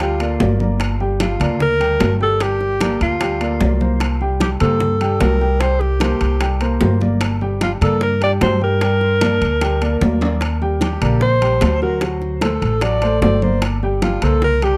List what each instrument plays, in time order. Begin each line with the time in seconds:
Already playing: upright bass D2, alto saxophone F4
0.00 upright piano G3 G4 G5, high bongo, high conga, high timbale
0.20 upright piano A#3 A#4 D5, high bongo, high conga, high timbale
0.40 upright bass G1, upright piano A#3 A#4 D5, high bongo, low bongo, high conga, low timbale
0.60 upright piano A#3 A#4 D5, high bongo, high conga
0.80 high bongo, high conga, high timbale
1.00 upright piano G3 G4 G5, high conga
1.20 alto saxophone F4, high bongo, high conga, high timbale, low timbale
1.40 upright bass D2, upright piano A#3 A#4 D5, low conga, high timbale
1.60 alto saxophone A#4, high bongo, high conga, low conga
1.80 upright piano G3 G4 G5, high conga, high timbale
2.00 upright bass G1, high bongo, low bongo, high conga, high timbale, low timbale
2.20 upright piano G3 G4 G5, alto saxophone A4, high conga
2.40 upright piano G3 G4 G5, alto saxophone G4, high bongo, high conga, high timbale
2.60 high bongo, high conga
2.81 upright piano A#3 A#4 D5, high bongo, high conga, high timbale, low timbale
3.01 upright bass D2, alto saxophone F4, high conga, high timbale
3.21 upright piano G3 G4 G5, high bongo, high conga, high timbale
3.41 upright piano A#3 A#4 D5, high bongo, high conga, high timbale
3.61 upright bass C2, upright piano A#3 A#4 D5, high bongo, low bongo, high conga, low timbale
3.81 upright piano A#3 A#4 C5, high bongo, high conga
4.00 high bongo, high conga, high timbale
4.21 upright piano G3 G4 G5, high conga
4.40 alto saxophone G4, high bongo, high conga, high timbale, low timbale
4.60 upright bass G2, upright piano A#3 G4 C5, alto saxophone A4, low conga, high timbale
4.80 high bongo, high conga, low conga
5.01 upright piano G3 G4 G5, high conga, high timbale
5.21 upright bass C2, alto saxophone A#4, high bongo, low bongo, high conga, high timbale, low timbale
5.41 upright piano G3 G4 G5, high conga
5.60 upright piano G3 G4 G5, alto saxophone C5, high bongo, high conga, high timbale
5.81 alto saxophone G4, high bongo, high conga
6.00 upright piano A#3 A#4 C5, high bongo, high conga, high timbale, low timbale
6.21 upright bass C2, high conga, high timbale
6.41 upright piano G3 G4 G5, high bongo, high conga, high timbale
6.61 upright piano A#3 A#4 C5, high bongo, high conga, high timbale
6.81 upright bass G1, upright piano A#3 A#4 C5, high bongo, low bongo, high conga, low timbale
7.01 upright piano A#3 A#4 D5, high bongo, high conga
7.21 high bongo, high conga, high timbale
7.41 upright piano G3 G4 G5, high conga
7.61 alto saxophone F4, high bongo, high conga, high timbale, low timbale
7.81 upright bass G2, upright piano A#3 A#4 D5, alto saxophone A4, low conga, high timbale
8.01 alto saxophone A#4, high bongo, high conga
8.22 upright piano G3 G4 G5, alto saxophone D5, high conga, high timbale
8.41 upright bass G2, alto saxophone C5, high bongo, low bongo, high conga, high timbale, low timbale
8.61 upright piano G3 G4 G5, alto saxophone A#4, high conga
8.81 upright piano G3 G4 G5, high bongo, high conga, high timbale
9.01 high bongo, high conga
9.21 upright piano A#3 A#4 D5, high bongo, high conga, high timbale, low timbale
9.41 upright bass D2, high conga, high timbale
9.61 upright piano G3 G4 G5, high bongo, high conga, high timbale
9.81 upright piano A#3 A#4 D5, high bongo, high conga, high timbale
10.01 upright bass D#2, upright piano A#3 A#4 D5, high bongo, low bongo, high conga, low timbale
10.21 upright piano A#3 A#4 D5, high bongo, high conga, high timbale
10.41 high bongo, high timbale
10.62 upright piano G3 G4 G5, high conga
10.81 alto saxophone G4, high bongo, high conga, high timbale, low timbale
11.02 upright bass A#1, upright piano A#3 A#4 D5, low conga, high timbale
11.21 alto saxophone C5, high bongo, high conga
11.41 upright piano G3 G4 G5, high conga, high timbale
11.61 upright bass D2, high bongo, low bongo, high conga, high timbale, low timbale
11.82 upright piano F#3 F#4 F#5, alto saxophone A#4, high conga
12.01 upright piano F#3 F#4 F#5, high bongo, high conga, high timbale
12.21 high bongo, high conga
12.41 upright piano A3 A4 C5, alto saxophone A4, high bongo, high conga, high timbale, low timbale
12.62 upright bass A1, high conga, high timbale
12.81 upright piano F#3 F#4 F#5, alto saxophone D5, high bongo, high conga, high timbale
13.02 upright piano A3 A4 C5, high bongo, high conga, high timbale
13.22 upright bass G1, upright piano A3 A4 C5, alto saxophone D5, high bongo, low bongo, high conga, low timbale
13.42 upright piano A#3 A#4 D5, alto saxophone C5, high bongo, high conga
13.62 high bongo, high conga, high timbale
13.83 upright piano G3 G4 G5, high conga
14.02 alto saxophone F4, high bongo, high conga, high timbale, low timbale
14.22 upright bass C2, upright piano A#3 A#4 C5, alto saxophone A4, low conga, high timbale
14.42 alto saxophone A#4, high bongo, high conga, low conga
14.62 upright piano G3 G4 G5, alto saxophone G4, high conga, high timbale